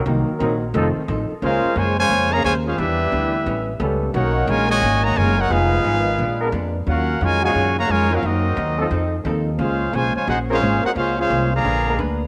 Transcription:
X:1
M:4/4
L:1/8
Q:"Swing" 1/4=176
K:Bbm
V:1 name="Trumpet section"
z8 | [DAcf]2 [Fcda] [Fcda]2 [Adfb] [Fcda] [DAcf] | [=D=G=B=e]6 z2 | [^D^A^c^f]2 [=FAc_a] [^Fc^da]2 [Fcd^a] [=FAc_a] [D^Ac^f] |
[EA_cf]6 z2 | [DBfg]2 [FBda] [Gdfa]2 [Gdfb] [FBda] [DGBf] | [CGBe]6 z2 | [DAcf]2 [Fcda] [Fcda] [EAcg] [DAcf]2 [EAcg] |
[DAcf] [DAcf]2 [A=dfb]3 z2 |]
V:2 name="Hollow-body jazz guitar"
[C,B,EG] z [C,B,EG] z [F,CE=A] z [F,CEA] z | [B,DAc] z [B,DAc] z [B,DAc] z [B,DAc] z | [=E,=B,=D=G] z [E,B,DG] z [=A,,=G,B,^C] z [A,,G,B,C] z | [=B,,^D,^A,^C] z [B,,D,A,C] z [B,,D,A,C] z [B,,D,A,C] z |
[F,_CEA] z [F,CEA] z [B,,A,C=D] z [B,,A,CD] z | [E,G,DF] z [E,G,DF] z [E,G,DF] z [E,G,DF] z | [C,G,B,E] z [C,G,B,E] z [F,CE=A] z [F,CEA] z | [B,DAc] z [B,DAc] z [B,DAc] z [B,DAc] z |
[B,DAc] z [B,DAc] z [B,=DA_c] z [B,DAc] z |]
V:3 name="Trombone section"
z2 [G,CEB] z [F,CE=A] z3 | [A,DBc]3 z2 [A,CDB] z2 | z6 [=G,=B,^C=A]2 | [^D,^A,^C^A]4- [D,A,CA] z3 |
[F,_CEA]3 z2 [A,C=DB] z2 | z3 [F,DEG] z3 [G,CEB] | z3 [F,CE=A] z2 [F,CEA]2 | z4 z [A,CDB] z [A,CDB] |
z4 z [A,_C=DB] z2 |]
V:4 name="Trombone section" clef=bass
z8 | [A,DF]2 [D,F,A,] [D,F,A,]2 [D,F,B,] [D,F,A,] [A,DF] | [=G,=B,=E]6 z2 | [^A,^D^F]2 _A, [^A,,^D,_A,]2 [D,^F,^A,] _A, [^A,DF] |
[A,_CF]6 z2 | [B,DG]2 A, [B,,D,A,]2 [D,G,B,] A, [B,DF] | [G,B,E]6 z2 | [A,DF]2 [D,F,A,] [D,F,A,] G [A,DF]2 G |
[A,DF] [A,DF]2 [=D,F,B,]3 z2 |]
V:5 name="Grand piano" clef=bass
[E,G,B,]3 z [E,=A,C] z3 | z8 | z8 | z8 |
z8 | z8 | z8 | z8 |
z8 |]
V:6 name="Upright bass" clef=bass
C,, z B,,,2 F,,, z =A,,, z | D,, z G,,2 F,,2 E,,2 | =E,,2 =D,,2 =A,,,2 ^C,,2 | =B,,,2 ^A,,,2 _A,,,2 ^F,,,2 |
F,,,2 A,,,2 B,,,2 F,,2 | E,,2 F,,2 G,,2 F,,2 | G,,2 E,,2 F,,2 E,,2 | D,,2 _C,, z B,,,2 A,,, z |
D,,2 C,,2 B,,,2 =D,,2 |]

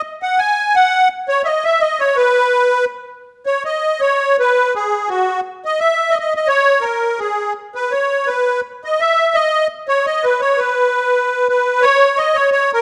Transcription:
X:1
M:3/4
L:1/16
Q:"Swing" 1/4=169
K:B
V:1 name="Accordion"
z2 f2 g4 f4 | z2 c3/2 e/2 d2 e2 d2 c2 | B8 z4 | z2 c2 d4 c4 |
B4 G4 F4 | z2 d2 e4 (3d2 d2 d2 | c4 A4 G4 | z2 B2 c4 B4 |
z2 d2 e4 d4 | z2 c2 d2 B2 c2 B2- | B8 B4 | [K:C#mix] c4 d2 c2 c2 A2 |]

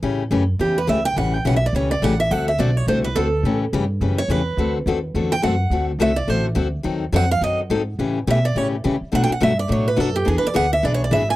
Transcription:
X:1
M:4/4
L:1/8
Q:"Swing" 1/4=211
K:Amix
V:1 name="Steel-string acoustic guitar"
z4 G B e g | f g (3f e d c d f e | f e d c =c B A2- | A z4 c B2- |
B z4 g f2- | f z e d =c z3 | z2 f =f ^d z3 | z2 e d c z3 |
(3f g f e d c B A G | (3^G B d f e (3d c d e ^g |]
V:2 name="Steel-string acoustic guitar"
[C,E,A,CG] z [C,E,A,CG] z [C,E,A,CG] z [C,E,A,CG] z | [C,E,A,CG] z [C,E,A,CG] z [C,E,A,CG] z [C,E,A,CG] z | [D,A,=CFA] z [D,A,CFA] z [D,A,CFA] z [D,A,CFA] z | [C,E,A,CG] z [C,E,A,CG] z [C,E,A,CG] z [C,E,A,CG] z |
[D,A,=CFA] z [D,A,CFA] z [D,A,CFA] z [D,A,CFA] z | [D,A,=CFA] z [D,A,CFA] z [D,A,CFA] z [D,A,CFA] z | [^D,F,^B,^DA] z [D,F,B,DA] z [D,F,B,DA] z [D,F,B,DA] z | [C,E,A,CG] z [C,E,A,CG] z [C,E,A,CG] z [C,E,A,CG] z |
[B,,F,A,DF] z [B,,F,A,DF] z [B,,F,A,DF] z [B,,F,A,DF] z | [E,B,D^G] z [E,B,DG] z [E,B,DG] z [E,B,DG] z |]
V:3 name="Upright bass" clef=bass
A,,2 F,,2 E,,2 C,,2 | A,,,2 B,,,2 C,,2 A,,,2 | D,,2 B,,,2 =C,,2 D,,2 | A,,2 G,,2 F,,2 E,,2 |
D,,2 ^D,,2 E,,2 F,,2 | D,,2 =C,,2 A,,,2 D,,2 | ^D,,2 =F,,2 ^F,,2 ^G,,2 | A,,2 B,,2 A,,2 C, z |
B,, z G,,2 A,,2 F,,2 | E,, z D,,2 B,,,2 ^G,,,2 |]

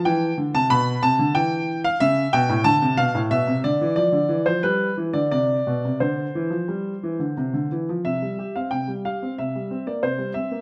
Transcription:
X:1
M:4/4
L:1/16
Q:1/4=91
K:C
V:1 name="Grand piano"
g3 a b2 a2 g3 f e2 g2 | a2 f2 e2 d2 d3 c B3 d | d4 c8- c2 z2 | e3 f g2 f2 e3 d c2 e2 |]
V:2 name="Grand piano" clef=bass
E,2 D, C, B,,2 C, D, E,4 ^C,2 B,, A,, | D, C, B,, A,, B,, C, D, E, F, D, E, F, G,2 E, D, | C,2 B,, C, D,2 E, F, G,2 E, D, C, D, E, F, | C, G, G C C, G, G C C, G, C _B, C, G, C B, |]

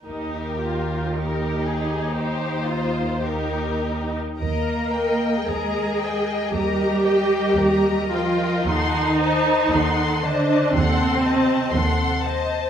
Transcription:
X:1
M:4/4
L:1/8
Q:1/4=57
K:Eb
V:1 name="Violin section"
B2 G2 c2 B2 | b g b g b g b g | c' =a c' a c' a c' a |]
V:2 name="Violin section"
G2 B A G F G2 | [Be] [Be] [Be] [Be] [Be] [Be] [Be] [Be] | [=A_g] [ce] [Ag] [ce] [Ag] [ce] [Ag] [ce] |]
V:3 name="Viola section"
E F E4 E2 | B2 A2 G3 F | E3 D C3 z |]
V:4 name="Cello section" clef=bass
E,,8 | B,2 A,2 G,3 F, | E,3 D, C,3 z |]
V:5 name="Double bass section" clef=bass
E,,8 | E,,2 E,,2 E,,2 E,,2 | E,,2 E,,2 E,,2 E,,2 |]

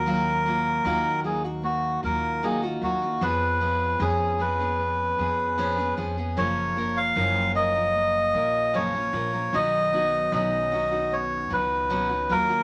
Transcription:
X:1
M:4/4
L:1/16
Q:1/4=76
K:Blyd
V:1 name="Melodica"
A6 G2 F2 A2 G2 F2 | B4 G2 B8 z2 | c3 e3 d6 c4 | d4 d4 c2 B4 A2 |]
V:2 name="Clean electric guitar"
F,2 A,2 D4 A,2 E2 D4 | E,2 B,2 C2 G2 B,2 G2 C2 G2 | E,2 A,2 C2 E2 A,2 E2 C2 E2 | D,2 B,2 C2 F2 B,2 F2 C2 F,2 |]
V:3 name="Steel-string acoustic guitar"
[D,F,A,EF]2 [F,A,EF]2 [D,F,A,EF]2 [F,A,EF] [A,F]3 [F,A,EF]2 [D,F,A,EF] [A,EF] [F,A,EF] [A,EF] | [E,B,CG]2 [E,B,CG]2 [E,B,CG]2 [E,B,CG] [B,CG]3 [E,B,CG]2 [E,B,CG] [B,CG] [E,B,CG] [B,CG] | [F,,C,E,A,CA]2 [E,A,CA]2 [F,,C,E,A,CA]2 [E,A,CA] [E,A,CA]3 [E,A,CA]2 [F,,C,E,A,CA] [E,A,CA] [E,A,CA] [E,A,CA] | [B,,F,CDF]2 [F,CDF]2 [B,,F,CDF]2 [F,CDF] [CDF]3 [F,CDF]2 [B,,F,CDF] [CDF] [F,A,EF] [A,EF] |]
V:4 name="Upright bass" clef=bass
D,,4 D,,6 D,,4 D,,2 | E,,4 E,,6 E,,4 E,,2 | F,,,4 F,,,6 A,,,4 A,,,2 | B,,,4 B,,,6 C,,4 D,,2 |]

